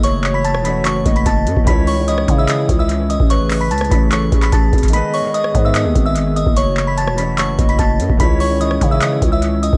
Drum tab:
HH |x-----------------------x-----------x-----------x-----------x-----x-----x-----------x-----------|x-----------o-----------x-----------x-----------x-----------x-----------x-----------x-----------|x-----------o-----------x---x---x---x-----------x-----------x-----x-----x-----------x--x--x--x--|x-----------o-----------x-----------x-----------x-----------x-----------x-----------x-----------|
CP |------------x-----------------------------------x-----------------------------------------------|------------------------------------------------x-----------------------------------------------|------------x-----------------------------------x-----------------x-----------------------------|------------------------------------------------x-----------------------------------------------|
SD |------------------------------r-----------------------------------------------------------------|------------------------------r-----------------------------------------------------------------|------------------------------r-----------------------------------------------------------------|------------------------------r-----------------------------------------------------------------|
BD |------------------------------------------------------------o-----------o-----------------o-----|o-----------------------------------o-----------------------o-----------------------------o-----|------------------------------------o-----------------------o-----------o-----------o-----o-----|------------------------------------o-----------------------o-----------------------------o-----|

HH |x-----------------------x-----------x-----------x-----------x-----x-----x-----------x-----------|x-----------o-----------x-----------x-----------x-----------x-----------x-----------x-----------|
CP |------------x-----------------------------------x-----------------------------------------------|------------------------------------------------x-----------------------------------------------|
SD |------------------------------r-----------------------------------------------------------------|------------------------------r-----------------------------------------------------------------|
BD |------------------------------------------------------------o-----------o-----------------o-----|o-----------------------------------o-----------------------o-----------------------------o-----|